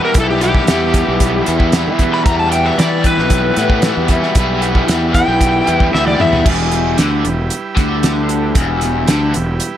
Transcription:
Already playing: E2 B2 E3 G3 B3 E4 G4 B4
0.05 A#4
0.14 B1 E2 B2 E3 G3 B3 E4, kick, closed hi-hat
0.20 A4
0.30 G4
0.41 E3 G3 B3 E4 G4, closed hi-hat
0.55 kick
0.67 E2 E3 G3 B3 E4, snare, closed hi-hat
0.94 kick, snare, closed hi-hat
1.08 B1
1.20 kick, closed hi-hat
1.46 E2 E3 G3 B3 E4, closed hi-hat
1.60 kick
1.72 E2 B2 E3 G3 B3 E4, snare, closed hi-hat
1.87 E3
1.99 E3 G3 B3 E4, kick, closed hi-hat
2.14 B5
2.26 E2 B2 E3 G3 B3 E4 A#5, kick, closed hi-hat
2.39 A5
2.52 E3 G3 B3 E4 G5, closed hi-hat
2.66 E5
2.78 E3 G3 B3 D5, snare, closed hi-hat
2.83 E4
3.04 B4, kick, closed hi-hat
3.17 B1, snare
3.30 kick, closed hi-hat
3.56 A2 E3 G3 B3 E4, closed hi-hat
3.70 kick
3.82 E2 B2 E3 G3, snare, closed hi-hat
3.86 B3 E4
3.97 E2
4.08 G3 B3 E4, kick, closed hi-hat
4.13 E3
4.23 snare
4.35 B1 E2 B2 E3 G3 B3 E4, kick, closed hi-hat
4.61 E3 G3 B3 E4, closed hi-hat
4.75 kick
4.87 E2 E3 G3 B3 E4, snare, closed hi-hat
5.14 G5, kick, closed hi-hat
5.28 B1
5.41 kick, closed hi-hat
5.67 E2 E3 G3 B3 E4, closed hi-hat
5.80 kick
5.93 D2 E2 B2 E3 G3 B3 E4 E5, snare
6.07 D5, high tom
6.19 E2 E3 G3 B3 E4 E5, mid tom
6.33 floor tom
6.44 E1 E2 G3 E4 G4 B4, kick, crash
6.72 closed hi-hat
6.97 D2 D3, snare, closed hi-hat
7.24 E1 E2, closed hi-hat
7.50 closed hi-hat
7.76 D2 D3, kick, snare, closed hi-hat
8.03 snare, closed hi-hat
8.29 closed hi-hat
8.55 E1 E2, kick, closed hi-hat
8.81 snare, closed hi-hat
9.07 D2 D3, snare, closed hi-hat
9.34 E1 E2, closed hi-hat
9.60 closed hi-hat

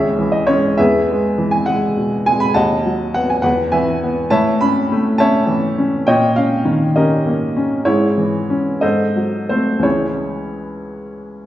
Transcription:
Already playing: C#2 G#4 C#5 E5
0.18 E3
0.32 D#5
0.47 G#3 C#4 C#5
0.77 E2 G#4 B4 E5
1.11 G#3
1.38 E3
1.51 G#5
1.66 G#3 F#5
1.97 B2
2.26 G#3 G#5
2.40 B5
2.54 D#2 D#5 F#5 A5
2.86 F#3
3.14 B3 F#5
3.30 G#5
3.42 E2 B4 F#5
3.72 E3 B4 E5 G#5
4.04 B3
4.30 A2 C#5 E5 A5
4.61 C#4 B5
4.92 A3
5.18 C#4 C#5 E5 A5
5.47 E3
5.78 C#4
6.07 A#2 C#5 D#5 G5
6.36 C#4 F5
6.65 D#3
6.96 C#4 G4 A#4 D#5
7.26 A#3
7.57 C#4
7.85 G#2 E4 G#4 C#5
8.17 E3
8.50 C#4
8.81 G#2 A4 C5 D#5
9.16 F#3
9.49 A3 C4 C5
9.79 C#2 E3 G#3
9.83 C#4 E4 G#4 C#5

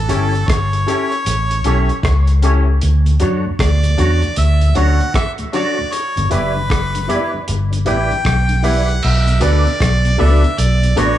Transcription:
Already playing: A4
0.08 G1 C#4 E4 G4 A4 C#5, closed hi-hat
0.35 closed hi-hat
0.48 G1 C#5, kick, cross-stick, closed hi-hat
0.73 closed hi-hat
0.86 C#4 E4 G4 A4 C#5, closed hi-hat
1.12 muted clean electric guitar stroke, closed hi-hat
1.26 A1, closed hi-hat
1.51 muted clean electric guitar stroke, closed hi-hat
1.64 B1 C#4 E4 G4 A4 C#5, closed hi-hat
1.89 closed hi-hat
2.03 C#2, kick, cross-stick, closed hi-hat
2.27 closed hi-hat
2.42 C#4 E4 G4 A4 C#5, closed hi-hat
2.67 G4 A4
2.81 D2, closed hi-hat
3.06 D2 A2, closed hi-hat
3.20 F#2 D3 F#3 C#4 D4 F#4 A4 C#5, closed hi-hat
3.45 D2 A2
3.59 D2 D5, kick, cross-stick, closed hi-hat
3.83 D2 A2, closed hi-hat
3.98 E2 D3 F#3 C#4 D4 F#4 A4 C#5, closed hi-hat
4.22 D2 A2, muted clean electric guitar stroke, closed hi-hat
4.36 D2 E5, closed hi-hat
4.61 D2 A2, closed hi-hat
4.75 D2 D3 F#3 C#4 D4 F#4 A4 C#5 F#5, closed hi-hat
5.00 D2 A2, closed hi-hat
5.14 E5, kick, cross-stick, closed hi-hat
5.38 D2 A2, closed hi-hat
5.53 D3 F#3 C#4 D4 F#4 A4 C#5 D5, closed hi-hat
5.78 D2 A2 F#4 C#5
5.92 C#5, closed hi-hat
6.17 G1 G2 D3, closed hi-hat
6.30 F#1 E3 G3 B3 E4 G4 B4 D5, closed hi-hat
6.55 G2 D3
6.70 F#1, kick, cross-stick, closed hi-hat
6.95 G2 D3, closed hi-hat
7.08 E3 G3 B3 E4 G4 B4 D5, closed hi-hat
7.32 G2 D3, muted clean electric guitar stroke
7.48 G1, closed hi-hat
7.71 G2 D3, muted clean electric guitar stroke, closed hi-hat
7.85 A1 E3 G3 B3 E4 G4 B4 D5 G5, closed hi-hat
8.10 G2 D3, closed hi-hat
8.25 B1, kick, cross-stick, closed hi-hat
8.49 G2 D3, closed hi-hat
8.62 E3 G3 B3 E4 G4 B4 D5 F#5, open hi-hat
8.88 G4 B4, closed hi-hat
9.03 B1 E5, crash
9.26 B2, closed hi-hat
9.40 D2 D3 A3 B3 D4 F#4 A4 B4 D5, closed hi-hat
9.65 B2, closed hi-hat
9.80 B1, kick, cross-stick, closed hi-hat
10.04 B2, closed hi-hat
10.18 C#2 D3 A3 B3 D4 F#4 A4 B4 D5 E5, open hi-hat
10.43 B2, muted clean electric guitar stroke, closed hi-hat
10.58 B1 D5, closed hi-hat
10.82 B2, muted clean electric guitar stroke, closed hi-hat
10.96 A1 D3 A3 B3 D4 F#4 A4 B4 C#5 D5, closed hi-hat

